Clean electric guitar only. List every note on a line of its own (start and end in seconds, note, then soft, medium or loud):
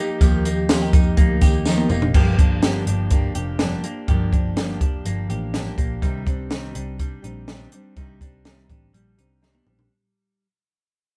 0.00 0.21 F3 medium
0.00 0.45 A#3 medium
0.00 0.92 D#4 medium
0.00 0.69 G4 medium
0.21 2.14 F3 medium
0.46 1.17 A#3 medium
0.69 0.82 F4 medium
0.82 1.41 G4 medium
0.93 1.65 D#4 soft
1.17 1.91 A#3 medium
1.42 2.15 G4 medium
1.66 2.20 D#4 medium
1.91 3.12 A#3 medium
2.15 4.07 F3 medium
2.15 2.63 G4 medium
2.39 2.87 D4 medium
2.64 3.35 G4 medium
2.88 3.60 D4 medium
3.12 3.83 A#3 medium
3.35 4.08 G4 medium
3.60 4.32 D4 medium
3.84 5.05 A#3 medium
4.08 6.02 F3 medium
4.08 4.56 G4 medium
4.33 4.81 D4 medium
4.57 5.29 G4 medium
4.81 5.53 D4 soft
5.06 5.77 A#3 medium
5.30 8.80 G4 medium
5.54 6.02 D4 medium
5.78 6.07 A#3 medium
6.02 6.99 G3 medium
6.02 6.51 D#4 medium
6.27 6.75 D4 medium
6.51 7.24 D#4 medium
6.76 7.48 D4 medium
7.00 7.72 G3 medium
7.24 7.97 D#4 medium
7.48 8.21 D4 soft
7.72 7.96 G3 medium
7.97 8.93 G3 medium
7.97 8.46 D#4 medium
8.22 8.69 D4 medium
8.46 9.18 D#4 medium
8.70 9.43 D4 soft
8.94 9.67 G3 medium
9.18 10.46 D#4 medium
9.43 9.55 C4 soft
9.55 9.96 D4 soft
9.67 10.46 G3 soft